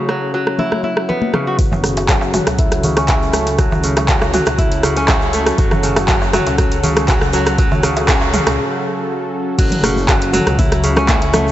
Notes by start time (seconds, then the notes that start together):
Already playing: C#3 F#3 A3 C#4 E4 F#4 C#5
0.09 F#3, cross-stick
0.34 F#3
0.47 cross-stick
0.58 E4, high conga, low conga
0.72 cross-stick, high conga
0.83 E4, high conga
0.97 cross-stick
1.09 B3, low conga
1.22 high conga
1.34 C#3, cross-stick, low conga
1.47 F#4
1.59 F#1 F#3 C#4 F#4 A4, kick, closed hi-hat, shaker
1.72 mid tom, darbuka ka, darbuka dum, shaker
1.84 C#3, cross-stick, open hi-hat, shaker
1.97 closed hi-hat, darbuka tek, shaker
2.09 F#3, kick, cross-stick, clap, closed hi-hat, shaker
2.21 darbuka ka, darbuka tek, shaker
2.34 F#3, mid tom, open hi-hat, darbuka ka, shaker
2.47 C#2, cross-stick, closed hi-hat, darbuka tek, shaker
2.58 E4, kick, closed hi-hat, shaker
2.71 cross-stick, closed hi-hat, shaker
2.83 C#3, open hi-hat, darbuka dum, shaker
2.97 C#4, cross-stick, closed hi-hat, shaker
3.08 E4, kick, clap, closed hi-hat, shaker
3.23 shaker
3.33 A3, cross-stick, open hi-hat, shaker
3.47 closed hi-hat, shaker
3.59 F#3, kick, cross-stick, closed hi-hat, shaker
3.72 darbuka ka, darbuka dum, shaker
3.84 C#3, open hi-hat, shaker
3.97 cross-stick, closed hi-hat, darbuka tek, shaker
4.08 F#3, kick, clap, closed hi-hat, shaker
4.22 cross-stick, darbuka ka, darbuka tek, shaker
4.34 F#3, mid tom, open hi-hat, darbuka ka, shaker
4.46 C#2, cross-stick, closed hi-hat, darbuka tek, shaker
4.58 E4, kick, closed hi-hat, shaker
4.72 closed hi-hat, shaker
4.83 C#3, cross-stick, open hi-hat, darbuka tek, shaker
4.97 C#4, closed hi-hat, shaker
5.08 E4, kick, cross-stick, clap, closed hi-hat, shaker
5.22 shaker
5.33 A3, open hi-hat, shaker
5.46 cross-stick, closed hi-hat, shaker
5.58 F#1 F#3, kick, closed hi-hat, shaker
5.71 cross-stick, mid tom, darbuka ka, darbuka dum, shaker
5.83 C#3, open hi-hat, shaker
5.96 cross-stick, closed hi-hat, darbuka tek, shaker
6.08 F#3, kick, clap, closed hi-hat, shaker
6.22 darbuka ka, darbuka tek, shaker
6.33 F#3, cross-stick, mid tom, open hi-hat, darbuka ka, shaker
6.47 C#2, closed hi-hat, darbuka tek, shaker
6.58 F#3, kick, cross-stick, closed hi-hat, shaker
6.72 closed hi-hat, shaker
6.83 C#3, open hi-hat, darbuka dum, shaker
6.96 cross-stick, closed hi-hat, shaker
7.08 F#3, kick, clap, closed hi-hat, shaker
7.22 cross-stick, shaker
7.33 F#3, open hi-hat, shaker
7.46 cross-stick, closed hi-hat, shaker
7.58 F#3, kick, closed hi-hat, shaker
7.71 darbuka ka, darbuka dum, shaker
7.83 C#3, cross-stick, open hi-hat, shaker
7.97 closed hi-hat, darbuka tek, shaker
8.08 F#3, kick, cross-stick, clap, closed hi-hat, shaker
8.21 darbuka ka, darbuka tek, shaker
8.33 C#3, mid tom, open hi-hat, darbuka ka, shaker
8.46 C#2, cross-stick, closed hi-hat, darbuka tek, shaker
9.58 F#1 F#3 C#4 F#4 A4, kick, closed hi-hat, crash, shaker
9.70 closed hi-hat, mid tom, low conga, shaker
9.83 C#3, cross-stick, open hi-hat, high conga, shaker
9.97 high conga, shaker
10.08 F#3, kick, cross-stick, clap, closed hi-hat, shaker
10.21 closed hi-hat, shaker
10.33 F#3, mid tom, open hi-hat, shaker
10.46 C#2, cross-stick, closed hi-hat, shaker
10.59 E4, kick, closed hi-hat, high conga, low conga, shaker
10.72 cross-stick, closed hi-hat, shaker
10.84 C#3, open hi-hat, shaker
10.96 C#4, cross-stick, low conga, shaker
11.08 E4, kick, clap, closed hi-hat, high conga, shaker
11.22 closed hi-hat, shaker
11.34 A3, cross-stick, open hi-hat, high conga, low conga, shaker
11.48 shaker